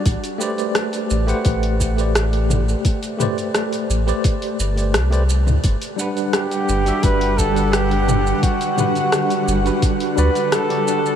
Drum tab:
HH |oo-ooo-ooo-ooo--|oo-ooo-ooo-ooo--|oo-ooo-ooo-ooo--|oo-ooo-ooo-ooo--|
SH |xxxxxxxxx-xxx-xx|xxxxxxxxx-xxxxxx|xxxxxxxxx-xxx-xx|xxxxxxxxx-xxx-xx|
SD |----r-------r---|----r-------r---|----r-------r---|----r-------r---|
T2 |--------------o-|--o------------o|--------------o-|--o-------------|
BD |o-------o-o-----|o-------o-------|o-------o-o-----|o-------o-------|